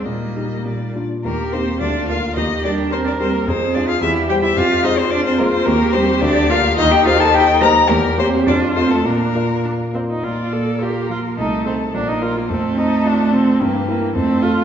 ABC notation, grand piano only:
X:1
M:2/4
L:1/8
Q:1/4=107
K:Eb
V:1 name="Grand piano"
B,, [EG] B,, [DF] | E,, [B,EG] D,, [B,FB] | E,, [G,GB]2 [G,GB] | F,, [A,FA] =E,, [G,Gc] |
F,, [A,Fc]2 [A,Fc] | [K:Bb] E,, [G,Gc] D,, [B,FB] | E,, [B,Gc]2 [B,Gc] | =E,, [B,G^c] F,, [A,F_e] |
B,, [B,Fd]2 [B,Fd] | B,, B, F F, | C,, [Ae] B,,, [FB] | F,, C F C, |
G,, [=EB] F,, [FA] |]